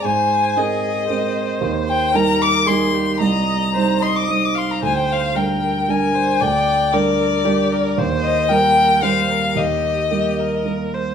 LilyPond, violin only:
\new Staff \with { instrumentName = "Violin" } { \time 3/4 \key ees \major \tempo 4 = 114 aes''4 ees''2 | r8 g''8 bes''8 d'''8 c'''4 | bes''4. c'''16 d'''16 ees'''16 d'''16 c'''16 bes''16 | aes''16 g''16 f''8 g''4 aes''4 |
g''4 d''2 | r8 ees''8 g''4 f''4 | ees''2 r4 | }